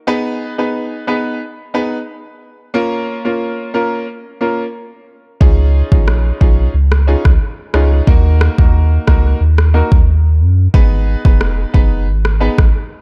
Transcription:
0.07 grand piano B3 D#4 G#4 B4
0.58 grand piano B3 D#4 G#4 B4
1.07 grand piano B3 D#4 G#4 B4
1.74 grand piano B3 D#4 G#4 B4
2.74 grand piano A#3 C#4 F4 A#4
3.25 grand piano A#3 C#4 F4 A#4
3.74 grand piano A#3 C#4 F4 A#4
4.41 grand piano A#3 C#4 F4 A#4
5.41 sub bass C#2, grand piano C#4 D#4 F4 G#4, kick
5.91 sub bass A#1, grand piano C#4 D#4 F4 G#4, kick
6.08 cross-stick
6.41 sub bass B1, grand piano C#4 D#4 F4 G#4, kick
6.74 sub bass C#2
6.92 cross-stick
7.07 grand piano C#4 D#4 F4 G#4
7.25 sub bass C#2, kick, cross-stick
7.74 sub bass C#2, grand piano C#4 D#4 F4 G#4, cross-stick
8.07 sub bass D#2, grand piano A#3 D#4 F#4 A#4, kick
8.41 cross-stick
8.58 sub bass D#2, grand piano A#3 D#4 F#4 A#4, kick
9.07 sub bass C#2, grand piano A#3 D#4 F#4 A#4, kick, cross-stick
9.41 sub bass D#2
9.58 cross-stick
9.74 grand piano A#3 D#4 F#4 A#4
9.92 sub bass D#2, kick
10.41 sub bass F#2
10.74 sub bass G#1, grand piano B3 D#4 G#4 B4, kick
11.25 sub bass F1, grand piano B3 D#4 G#4 B4, kick
11.41 cross-stick
11.74 sub bass F#1, grand piano B3 D#4 G#4 B4, kick
12.07 sub bass G#1
12.25 cross-stick
12.40 grand piano B3 D#4 G#4 B4
12.58 sub bass G#1, kick, cross-stick

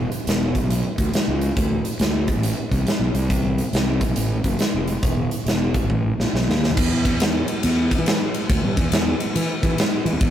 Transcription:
0.12 closed hi-hat
0.27 fingered electric bass E1, snare, closed hi-hat
0.55 kick, closed hi-hat
0.62 fingered electric bass B1
0.70 closed hi-hat
0.98 fingered electric bass D2, kick, closed hi-hat
1.14 snare, closed hi-hat
1.28 fingered electric bass C#2
1.41 closed hi-hat
1.57 fingered electric bass D2, kick, closed hi-hat
1.85 closed hi-hat
1.99 fingered electric bass D2, snare, closed hi-hat
2.28 kick, closed hi-hat
2.35 fingered electric bass A1
2.43 closed hi-hat
2.71 fingered electric bass C2, kick, closed hi-hat
2.87 snare, closed hi-hat
2.99 fingered electric bass B1
3.14 fingered electric bass C2, closed hi-hat
3.30 kick, closed hi-hat
3.58 closed hi-hat
3.73 fingered electric bass C2, snare, closed hi-hat
4.01 kick, closed hi-hat
4.08 fingered electric bass B1
4.16 fingered electric bass A1, closed hi-hat
4.44 fingered electric bass F#1, kick, closed hi-hat
4.59 snare, closed hi-hat
4.74 fingered electric bass F1
4.88 closed hi-hat
5.03 fingered electric bass E1, kick, closed hi-hat
5.31 closed hi-hat
5.46 fingered electric bass E1, snare, closed hi-hat
5.74 kick, closed hi-hat
5.83 fingered electric bass G#1
5.90 fingered electric bass A1, kick
6.18 fingered electric bass A#1, snare
6.33 fingered electric bass B1, snare
6.48 fingered electric bass D#2, snare
6.64 snare
6.70 floor tom
6.77 fingered electric bass E2, kick, crash
7.05 kick, ride
7.20 snare, ride
7.48 ride
7.63 fingered electric bass E2, ride
7.91 kick, ride
7.99 fingered electric bass E3
8.06 snare, ride
8.34 ride
8.49 fingered electric bass D2, kick, ride
8.64 fingered electric bass G2
8.77 fingered electric bass E2, kick, ride
8.92 fingered electric bass E2, snare, ride
9.20 ride
9.36 fingered electric bass E3, ride
9.63 fingered electric bass E3, kick, ride
9.78 snare, ride
10.05 fingered electric bass E3, ride
10.13 fingered electric bass E2
10.21 fingered electric bass E2, kick, ride

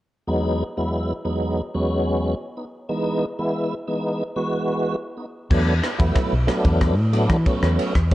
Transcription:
0.27 tonewheel organ E2 F#3 G#3 B3 D#4
0.77 tonewheel organ E2 F#3 G#3 B3 E4
1.25 tonewheel organ E2 F#3 G#3 B3 D#4
1.74 tonewheel organ E2 F#3 G#3 B3 C#4
2.57 tonewheel organ B3 D#4
2.89 tonewheel organ E3 G#3 B3 D#4
3.39 tonewheel organ E3 G#3 B3 E4
3.88 tonewheel organ E3 G#3 B3 D#4
4.36 tonewheel organ E3 G#3 B3 F#4
5.17 tonewheel organ B3 D#4
5.50 fretless electric bass E2, tonewheel organ F#3 A3 B3 D4, kick, crash
5.82 tonewheel organ B3 E4, cross-stick, ride
5.98 fretless electric bass E2, tonewheel organ F#3 A3 B3 E4, kick, ride
6.16 kick, cross-stick, ride
6.33 fretless electric bass B1
6.47 tonewheel organ F#3 A3 B3 D4, cross-stick, ride
6.65 fretless electric bass E2, kick, ride
6.81 kick, cross-stick, ride
6.99 fretless electric bass A2
7.13 tonewheel organ F#3 A3 B3 D4, ride
7.30 fretless electric bass E3, kick, cross-stick, ride
7.46 tonewheel organ F#3 A3 B3 C#4, kick, ride
7.63 fretless electric bass E2, cross-stick
7.79 ride
7.95 fretless electric bass E2, kick, cross-stick, ride

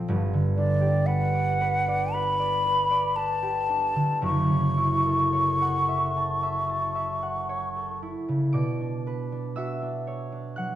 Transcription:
Already playing: harp F3 C4 A4 C5 D5
0.08 harp G1 G2
0.33 harp D3
0.57 harp D4, flute D5
0.81 harp G4
1.06 harp B4, flute F#5
1.34 harp D5
1.61 harp B4
1.88 harp D5
2.14 harp B4, flute B5
2.40 harp D5
2.66 harp B4
2.91 harp D5
3.16 harp B4, flute A5
3.43 harp G4
3.70 harp D4
3.96 harp D3
4.22 harp F#1 F#2, flute C#6
4.50 harp C#3
4.77 harp E4
5.05 harp A4
5.33 harp C#5
5.62 harp F#5
5.88 harp E5
6.17 harp A5
6.43 harp E5
6.69 harp A5
6.95 harp E5
7.23 harp F#5
7.49 harp C#5
7.76 harp A4
8.03 harp E4
8.28 harp C#3
8.53 harp B2 D5 D6
8.81 harp D4
9.07 harp B4
9.32 harp D4
9.56 harp F#4 E5 E6
9.82 harp D4
10.07 harp C#5
10.32 harp D4
10.56 harp F#3 F#5 F#6

